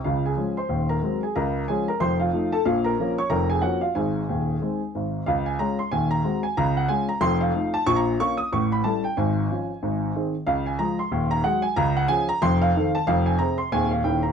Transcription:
X:1
M:4/4
L:1/16
Q:"Swing" 1/4=184
K:Db
V:1 name="Grand piano"
[Ff]2 [Aa]4 [cc']4 [Bb]4 [Aa]2 | [Bb]4 [Aa]2 [Bb]2 [cc']2 [Ff]4 [=A=a]2 | [Ff]2 [Bb]4 [dd']2 [Bb]2 [Aa]2 [Gg]2 [Ff]2 | [Aa]12 z4 |
f2 a2 b2 c'2 a2 b4 a2 | b2 g2 a2 b2 c'2 f4 =a2 | d' b3 d'2 e'2 d'2 _c'2 =a2 =g2 | a12- a2 z2 |
f2 a2 b2 c'4 b2 g2 a2 | b2 g2 a2 b2 c'2 f4 =a2 | [K:Ab] f2 a2 b2 c'2 a2 f2 g2 b2 |]
V:2 name="Grand piano" clef=bass
[D,,D,]4 [F,A,D]4 [E,,,E,,]4 [G,A,C]4 | [D,,D,]4 [F,A,D]4 [F,,,F,,]4 [F,=A,E]4 | [B,,,B,,]4 [F,B,D]4 [F,,,F,,]4 [F,B,D]4 | [A,,,A,,]4 [E,,,E,,]4 [A,CE]4 [A,,,A,,]4 |
[D,,D,]4 [A,DF]4 [E,,,E,,]4 [A,CG]4 | [D,,D,]4 [A,DF]4 [F,,,F,,]4 [=A,EF]4 | [B,,,B,,]4 [B,DF]4 [=A,,,=A,,]4 [=G,=E=A]4 | [A,,,A,,]4 [F,DF]4 [A,,,A,,]4 [E,CA]4 |
[D,,D,]4 [F,A,A]4 [E,,,E,,]4 [G,A,A]4 | [D,,D,]4 [F,DA]4 [F,,,F,,]4 [E,C=A]4 | [K:Ab] [F,,,F,,]4 [C,CA]4 [E,,,E,,E,CA]4 [E,,,E,,E,D_F]4 |]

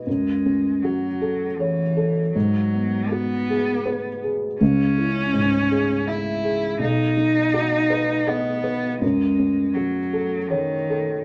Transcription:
X:1
M:3/4
L:1/8
Q:1/4=81
K:F#dor
V:1 name="Felt piano"
F,, C F A c A | G,, B, F G B G | C,, E G,, G e G | B,,, D F B d B |
F,, C F A c A |]
V:2 name="Cello" clef=bass
G,2 F,2 E,2 | F,2 B,3 z | C4 E2 | D4 B,2 |
G,2 F,2 D,2 |]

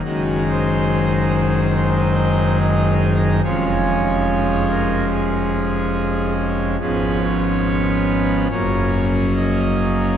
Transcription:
X:1
M:4/4
L:1/8
Q:1/4=71
K:Db
V:1 name="Pipe organ"
G c3 c2 e2 | d3 B A3 z | [K:F#] G c3 c2 d2 |]
V:2 name="Pipe organ" clef=bass
[G,,,G,,E,A,E]8 | [F,,,F,,F,A,D]8 | [K:F#] [G,,,G,,E,B,C]4 [F,,,F,,F,A,C]4 |]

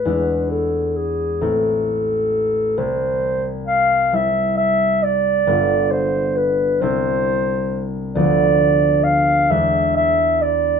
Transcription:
X:1
M:6/8
L:1/8
Q:3/8=44
K:C
V:1 name="Clarinet"
B A ^G A3 | c2 f e e d- | d c B c2 z | d2 f e e d |]
V:2 name="Harp" clef=bass
[E,,^G,DE]3 [A,,,A,CE]3 | C,,3 [G,CE]3 | [G,,,G,B,F]3 [C,,G,CE]3 | [D,,F,B,D]3 [E,,E,^G,D]3 |]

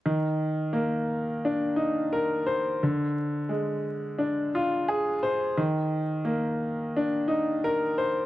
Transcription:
X:1
M:4/4
L:1/8
Q:"Swing 16ths" 1/4=87
K:Cm
V:1 name="Grand piano"
E,2 B,2 D E B c | D,2 A,2 D F A c | E,2 B,2 D E B c |]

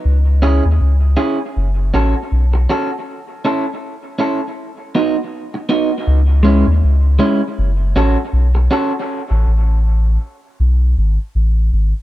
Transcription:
X:1
M:4/4
L:1/16
Q:"Swing 16ths" 1/4=80
K:C#m
V:1 name="Clean electric guitar"
z2 [CEG] z3 [CEG] z3 [CFA] z3 [CFA] z | z2 [CEA] z3 [CEA] z3 [B,DF] z3 [B,DF] z | z2 [G,CE] z3 [G,CE] z3 [CFA] z3 [CFA] z | z16 |]
V:2 name="Sub bass" clef=bass
C,,3 D,, C,,2 z2 F,,,2 A,,, z B,,,2 z2 | z16 | C,,3 D,, C,,2 z2 F,,,2 A,,, z B,,,2 z2 | z A,,, A,,,4 z2 B,,,2 G,,, z A,,,2 G,,, z |]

